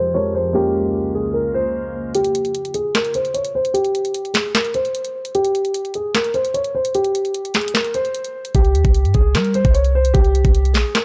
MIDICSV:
0, 0, Header, 1, 6, 480
1, 0, Start_track
1, 0, Tempo, 400000
1, 658, Time_signature, 4, 2, 24, 8
1, 13258, End_track
2, 0, Start_track
2, 0, Title_t, "Grand piano"
2, 0, Program_c, 0, 0
2, 0, Note_on_c, 0, 72, 95
2, 141, Note_off_c, 0, 72, 0
2, 172, Note_on_c, 0, 73, 88
2, 381, Note_off_c, 0, 73, 0
2, 418, Note_on_c, 0, 72, 89
2, 624, Note_off_c, 0, 72, 0
2, 656, Note_on_c, 0, 67, 100
2, 1333, Note_off_c, 0, 67, 0
2, 1378, Note_on_c, 0, 68, 77
2, 1584, Note_off_c, 0, 68, 0
2, 1605, Note_on_c, 0, 70, 76
2, 1817, Note_off_c, 0, 70, 0
2, 1853, Note_on_c, 0, 72, 88
2, 2532, Note_off_c, 0, 72, 0
2, 2580, Note_on_c, 0, 67, 103
2, 3255, Note_off_c, 0, 67, 0
2, 3292, Note_on_c, 0, 68, 81
2, 3501, Note_off_c, 0, 68, 0
2, 3542, Note_on_c, 0, 70, 83
2, 3746, Note_off_c, 0, 70, 0
2, 3780, Note_on_c, 0, 72, 93
2, 3985, Note_off_c, 0, 72, 0
2, 4010, Note_on_c, 0, 73, 80
2, 4219, Note_off_c, 0, 73, 0
2, 4261, Note_on_c, 0, 72, 91
2, 4466, Note_off_c, 0, 72, 0
2, 4487, Note_on_c, 0, 67, 104
2, 5169, Note_off_c, 0, 67, 0
2, 5205, Note_on_c, 0, 68, 70
2, 5417, Note_off_c, 0, 68, 0
2, 5456, Note_on_c, 0, 70, 75
2, 5663, Note_off_c, 0, 70, 0
2, 5695, Note_on_c, 0, 72, 90
2, 6373, Note_off_c, 0, 72, 0
2, 6418, Note_on_c, 0, 67, 112
2, 7094, Note_off_c, 0, 67, 0
2, 7142, Note_on_c, 0, 68, 81
2, 7347, Note_off_c, 0, 68, 0
2, 7381, Note_on_c, 0, 70, 91
2, 7586, Note_off_c, 0, 70, 0
2, 7611, Note_on_c, 0, 72, 99
2, 7820, Note_off_c, 0, 72, 0
2, 7850, Note_on_c, 0, 73, 87
2, 8060, Note_off_c, 0, 73, 0
2, 8096, Note_on_c, 0, 72, 91
2, 8303, Note_off_c, 0, 72, 0
2, 8337, Note_on_c, 0, 67, 103
2, 9014, Note_off_c, 0, 67, 0
2, 9059, Note_on_c, 0, 68, 82
2, 9265, Note_off_c, 0, 68, 0
2, 9287, Note_on_c, 0, 70, 78
2, 9498, Note_off_c, 0, 70, 0
2, 9535, Note_on_c, 0, 72, 85
2, 10213, Note_off_c, 0, 72, 0
2, 10261, Note_on_c, 0, 67, 99
2, 10936, Note_off_c, 0, 67, 0
2, 10973, Note_on_c, 0, 68, 83
2, 11181, Note_off_c, 0, 68, 0
2, 11222, Note_on_c, 0, 70, 85
2, 11426, Note_off_c, 0, 70, 0
2, 11459, Note_on_c, 0, 72, 94
2, 11665, Note_off_c, 0, 72, 0
2, 11690, Note_on_c, 0, 73, 82
2, 11899, Note_off_c, 0, 73, 0
2, 11941, Note_on_c, 0, 72, 91
2, 12146, Note_off_c, 0, 72, 0
2, 12165, Note_on_c, 0, 67, 104
2, 12847, Note_off_c, 0, 67, 0
2, 12883, Note_on_c, 0, 68, 73
2, 13096, Note_off_c, 0, 68, 0
2, 13135, Note_on_c, 0, 70, 72
2, 13258, Note_off_c, 0, 70, 0
2, 13258, End_track
3, 0, Start_track
3, 0, Title_t, "Grand piano"
3, 0, Program_c, 1, 0
3, 0, Control_c, 1, 64, 127
3, 0, Note_on_c, 1, 53, 64
3, 0, Note_on_c, 1, 56, 58
3, 0, Note_on_c, 1, 60, 62
3, 0, Note_on_c, 1, 67, 64
3, 0, Note_on_c, 1, 72, 75
3, 141, Note_off_c, 1, 53, 0
3, 145, Note_off_c, 1, 56, 0
3, 148, Note_off_c, 1, 60, 0
3, 151, Note_off_c, 1, 67, 0
3, 155, Note_off_c, 1, 72, 0
3, 164, Note_on_c, 1, 53, 53
3, 168, Note_on_c, 1, 56, 46
3, 171, Note_on_c, 1, 60, 44
3, 175, Note_on_c, 1, 67, 47
3, 178, Note_on_c, 1, 70, 56
3, 620, Note_off_c, 1, 56, 0
3, 638, Note_on_c, 1, 56, 69
3, 644, Note_on_c, 1, 58, 61
3, 646, Note_off_c, 1, 70, 0
3, 651, Note_off_c, 1, 53, 0
3, 651, Note_on_c, 1, 61, 64
3, 654, Note_off_c, 1, 60, 0
3, 656, Note_off_c, 1, 67, 0
3, 657, Note_on_c, 1, 65, 60
3, 664, Note_on_c, 1, 70, 72
3, 673, Control_c, 1, 64, 0
3, 868, Control_c, 1, 64, 127
3, 2529, Note_off_c, 1, 56, 0
3, 2532, Note_off_c, 1, 58, 0
3, 2536, Note_off_c, 1, 61, 0
3, 2539, Note_off_c, 1, 65, 0
3, 2542, Note_off_c, 1, 70, 0
3, 2596, Control_c, 1, 64, 0
3, 13258, End_track
4, 0, Start_track
4, 0, Title_t, "Ambient pad"
4, 0, Program_c, 2, 92
4, 0, Note_on_c, 2, 41, 79
4, 0, Note_on_c, 2, 53, 75
4, 0, Note_on_c, 2, 56, 71
4, 0, Note_on_c, 2, 67, 87
4, 638, Note_off_c, 2, 41, 0
4, 638, Note_off_c, 2, 53, 0
4, 638, Note_off_c, 2, 56, 0
4, 638, Note_off_c, 2, 67, 0
4, 657, Note_on_c, 2, 37, 78
4, 657, Note_on_c, 2, 49, 71
4, 657, Note_on_c, 2, 58, 74
4, 657, Note_on_c, 2, 65, 86
4, 2558, Note_off_c, 2, 37, 0
4, 2558, Note_off_c, 2, 49, 0
4, 2558, Note_off_c, 2, 58, 0
4, 2558, Note_off_c, 2, 65, 0
4, 13258, End_track
5, 0, Start_track
5, 0, Title_t, "808-style bass"
5, 0, Program_c, 3, 38
5, 10257, Note_on_c, 3, 36, 101
5, 10498, Note_on_c, 3, 39, 100
5, 10516, Note_off_c, 3, 36, 0
5, 10608, Note_off_c, 3, 39, 0
5, 10616, Note_on_c, 3, 36, 108
5, 10856, Note_on_c, 3, 43, 99
5, 10874, Note_off_c, 3, 36, 0
5, 10971, Note_off_c, 3, 43, 0
5, 10977, Note_on_c, 3, 36, 105
5, 11215, Note_on_c, 3, 55, 99
5, 11233, Note_off_c, 3, 36, 0
5, 11558, Note_off_c, 3, 55, 0
5, 11577, Note_on_c, 3, 36, 99
5, 12153, Note_off_c, 3, 36, 0
5, 12176, Note_on_c, 3, 36, 106
5, 12522, Note_off_c, 3, 36, 0
5, 12536, Note_on_c, 3, 36, 109
5, 12897, Note_on_c, 3, 34, 99
5, 12915, Note_off_c, 3, 36, 0
5, 13011, Note_off_c, 3, 34, 0
5, 13258, End_track
6, 0, Start_track
6, 0, Title_t, "Drums"
6, 2575, Note_on_c, 9, 42, 89
6, 2694, Note_off_c, 9, 42, 0
6, 2694, Note_on_c, 9, 42, 58
6, 2814, Note_off_c, 9, 42, 0
6, 2819, Note_on_c, 9, 42, 81
6, 2937, Note_off_c, 9, 42, 0
6, 2937, Note_on_c, 9, 42, 52
6, 3055, Note_off_c, 9, 42, 0
6, 3055, Note_on_c, 9, 42, 91
6, 3175, Note_off_c, 9, 42, 0
6, 3180, Note_on_c, 9, 42, 52
6, 3291, Note_off_c, 9, 42, 0
6, 3291, Note_on_c, 9, 42, 71
6, 3411, Note_off_c, 9, 42, 0
6, 3538, Note_on_c, 9, 38, 120
6, 3539, Note_on_c, 9, 42, 92
6, 3551, Note_on_c, 9, 39, 96
6, 3654, Note_off_c, 9, 42, 0
6, 3654, Note_on_c, 9, 42, 61
6, 3658, Note_off_c, 9, 38, 0
6, 3671, Note_off_c, 9, 39, 0
6, 3770, Note_off_c, 9, 42, 0
6, 3770, Note_on_c, 9, 42, 70
6, 3890, Note_off_c, 9, 42, 0
6, 3897, Note_on_c, 9, 42, 55
6, 4014, Note_off_c, 9, 42, 0
6, 4014, Note_on_c, 9, 42, 95
6, 4134, Note_off_c, 9, 42, 0
6, 4134, Note_on_c, 9, 42, 63
6, 4254, Note_off_c, 9, 42, 0
6, 4378, Note_on_c, 9, 42, 80
6, 4496, Note_off_c, 9, 42, 0
6, 4496, Note_on_c, 9, 42, 85
6, 4614, Note_off_c, 9, 42, 0
6, 4614, Note_on_c, 9, 42, 59
6, 4734, Note_off_c, 9, 42, 0
6, 4738, Note_on_c, 9, 42, 80
6, 4857, Note_off_c, 9, 42, 0
6, 4857, Note_on_c, 9, 42, 52
6, 4974, Note_off_c, 9, 42, 0
6, 4974, Note_on_c, 9, 42, 95
6, 5094, Note_off_c, 9, 42, 0
6, 5099, Note_on_c, 9, 42, 51
6, 5210, Note_on_c, 9, 46, 78
6, 5218, Note_on_c, 9, 38, 94
6, 5219, Note_off_c, 9, 42, 0
6, 5231, Note_on_c, 9, 39, 73
6, 5330, Note_off_c, 9, 46, 0
6, 5338, Note_off_c, 9, 38, 0
6, 5351, Note_off_c, 9, 39, 0
6, 5457, Note_on_c, 9, 38, 118
6, 5458, Note_on_c, 9, 42, 89
6, 5470, Note_on_c, 9, 39, 94
6, 5574, Note_off_c, 9, 42, 0
6, 5574, Note_on_c, 9, 42, 61
6, 5577, Note_off_c, 9, 38, 0
6, 5590, Note_off_c, 9, 39, 0
6, 5691, Note_off_c, 9, 42, 0
6, 5691, Note_on_c, 9, 42, 70
6, 5811, Note_off_c, 9, 42, 0
6, 5819, Note_on_c, 9, 42, 55
6, 5936, Note_off_c, 9, 42, 0
6, 5936, Note_on_c, 9, 42, 90
6, 6054, Note_off_c, 9, 42, 0
6, 6054, Note_on_c, 9, 42, 65
6, 6174, Note_off_c, 9, 42, 0
6, 6299, Note_on_c, 9, 42, 82
6, 6416, Note_off_c, 9, 42, 0
6, 6416, Note_on_c, 9, 42, 85
6, 6534, Note_off_c, 9, 42, 0
6, 6534, Note_on_c, 9, 42, 59
6, 6654, Note_off_c, 9, 42, 0
6, 6658, Note_on_c, 9, 42, 83
6, 6777, Note_off_c, 9, 42, 0
6, 6777, Note_on_c, 9, 42, 54
6, 6893, Note_off_c, 9, 42, 0
6, 6893, Note_on_c, 9, 42, 92
6, 7013, Note_off_c, 9, 42, 0
6, 7018, Note_on_c, 9, 42, 51
6, 7128, Note_off_c, 9, 42, 0
6, 7128, Note_on_c, 9, 42, 74
6, 7248, Note_off_c, 9, 42, 0
6, 7375, Note_on_c, 9, 38, 123
6, 7376, Note_on_c, 9, 42, 90
6, 7388, Note_on_c, 9, 39, 96
6, 7491, Note_off_c, 9, 42, 0
6, 7491, Note_on_c, 9, 42, 61
6, 7495, Note_off_c, 9, 38, 0
6, 7508, Note_off_c, 9, 39, 0
6, 7608, Note_off_c, 9, 42, 0
6, 7608, Note_on_c, 9, 42, 70
6, 7728, Note_off_c, 9, 42, 0
6, 7735, Note_on_c, 9, 42, 56
6, 7854, Note_off_c, 9, 42, 0
6, 7854, Note_on_c, 9, 42, 92
6, 7973, Note_off_c, 9, 42, 0
6, 7973, Note_on_c, 9, 42, 65
6, 8093, Note_off_c, 9, 42, 0
6, 8217, Note_on_c, 9, 42, 81
6, 8334, Note_off_c, 9, 42, 0
6, 8334, Note_on_c, 9, 42, 86
6, 8454, Note_off_c, 9, 42, 0
6, 8454, Note_on_c, 9, 42, 59
6, 8574, Note_off_c, 9, 42, 0
6, 8578, Note_on_c, 9, 42, 81
6, 8698, Note_off_c, 9, 42, 0
6, 8698, Note_on_c, 9, 42, 52
6, 8814, Note_off_c, 9, 42, 0
6, 8814, Note_on_c, 9, 42, 91
6, 8934, Note_off_c, 9, 42, 0
6, 8940, Note_on_c, 9, 42, 54
6, 9049, Note_on_c, 9, 46, 79
6, 9056, Note_off_c, 9, 42, 0
6, 9056, Note_on_c, 9, 42, 46
6, 9057, Note_on_c, 9, 38, 90
6, 9070, Note_on_c, 9, 39, 76
6, 9136, Note_off_c, 9, 42, 0
6, 9136, Note_on_c, 9, 42, 59
6, 9169, Note_off_c, 9, 46, 0
6, 9177, Note_off_c, 9, 38, 0
6, 9190, Note_off_c, 9, 39, 0
6, 9215, Note_off_c, 9, 42, 0
6, 9215, Note_on_c, 9, 42, 78
6, 9297, Note_on_c, 9, 38, 121
6, 9298, Note_off_c, 9, 42, 0
6, 9298, Note_on_c, 9, 42, 92
6, 9310, Note_on_c, 9, 39, 93
6, 9413, Note_off_c, 9, 42, 0
6, 9413, Note_on_c, 9, 42, 60
6, 9417, Note_off_c, 9, 38, 0
6, 9430, Note_off_c, 9, 39, 0
6, 9531, Note_off_c, 9, 42, 0
6, 9531, Note_on_c, 9, 42, 67
6, 9651, Note_off_c, 9, 42, 0
6, 9657, Note_on_c, 9, 42, 54
6, 9775, Note_off_c, 9, 42, 0
6, 9775, Note_on_c, 9, 42, 89
6, 9894, Note_off_c, 9, 42, 0
6, 9894, Note_on_c, 9, 42, 65
6, 10014, Note_off_c, 9, 42, 0
6, 10138, Note_on_c, 9, 42, 80
6, 10255, Note_off_c, 9, 42, 0
6, 10255, Note_on_c, 9, 42, 87
6, 10257, Note_on_c, 9, 36, 121
6, 10375, Note_off_c, 9, 42, 0
6, 10375, Note_on_c, 9, 42, 57
6, 10377, Note_off_c, 9, 36, 0
6, 10495, Note_off_c, 9, 42, 0
6, 10499, Note_on_c, 9, 42, 82
6, 10616, Note_on_c, 9, 36, 95
6, 10617, Note_off_c, 9, 42, 0
6, 10617, Note_on_c, 9, 42, 55
6, 10734, Note_off_c, 9, 42, 0
6, 10734, Note_on_c, 9, 42, 89
6, 10736, Note_off_c, 9, 36, 0
6, 10854, Note_off_c, 9, 42, 0
6, 10860, Note_on_c, 9, 42, 53
6, 10970, Note_off_c, 9, 42, 0
6, 10970, Note_on_c, 9, 42, 72
6, 10976, Note_on_c, 9, 36, 85
6, 11090, Note_off_c, 9, 42, 0
6, 11096, Note_off_c, 9, 36, 0
6, 11217, Note_on_c, 9, 38, 120
6, 11218, Note_on_c, 9, 42, 89
6, 11230, Note_on_c, 9, 39, 97
6, 11334, Note_off_c, 9, 42, 0
6, 11334, Note_on_c, 9, 42, 60
6, 11337, Note_off_c, 9, 38, 0
6, 11350, Note_off_c, 9, 39, 0
6, 11451, Note_off_c, 9, 42, 0
6, 11451, Note_on_c, 9, 42, 69
6, 11571, Note_off_c, 9, 42, 0
6, 11577, Note_on_c, 9, 36, 86
6, 11577, Note_on_c, 9, 42, 55
6, 11695, Note_off_c, 9, 42, 0
6, 11695, Note_on_c, 9, 42, 94
6, 11697, Note_off_c, 9, 36, 0
6, 11813, Note_off_c, 9, 42, 0
6, 11813, Note_on_c, 9, 42, 65
6, 11933, Note_off_c, 9, 42, 0
6, 12057, Note_on_c, 9, 42, 82
6, 12175, Note_off_c, 9, 42, 0
6, 12175, Note_on_c, 9, 42, 86
6, 12176, Note_on_c, 9, 36, 121
6, 12293, Note_off_c, 9, 42, 0
6, 12293, Note_on_c, 9, 42, 58
6, 12296, Note_off_c, 9, 36, 0
6, 12413, Note_off_c, 9, 42, 0
6, 12419, Note_on_c, 9, 42, 81
6, 12536, Note_on_c, 9, 36, 96
6, 12539, Note_off_c, 9, 42, 0
6, 12539, Note_on_c, 9, 42, 53
6, 12655, Note_off_c, 9, 42, 0
6, 12655, Note_on_c, 9, 42, 92
6, 12656, Note_off_c, 9, 36, 0
6, 12775, Note_off_c, 9, 42, 0
6, 12782, Note_on_c, 9, 42, 50
6, 12892, Note_on_c, 9, 46, 78
6, 12900, Note_on_c, 9, 38, 94
6, 12902, Note_off_c, 9, 42, 0
6, 12913, Note_on_c, 9, 39, 76
6, 13012, Note_off_c, 9, 46, 0
6, 13020, Note_off_c, 9, 38, 0
6, 13033, Note_off_c, 9, 39, 0
6, 13139, Note_on_c, 9, 38, 118
6, 13140, Note_on_c, 9, 42, 90
6, 13152, Note_on_c, 9, 39, 96
6, 13258, Note_off_c, 9, 38, 0
6, 13258, Note_off_c, 9, 39, 0
6, 13258, Note_off_c, 9, 42, 0
6, 13258, End_track
0, 0, End_of_file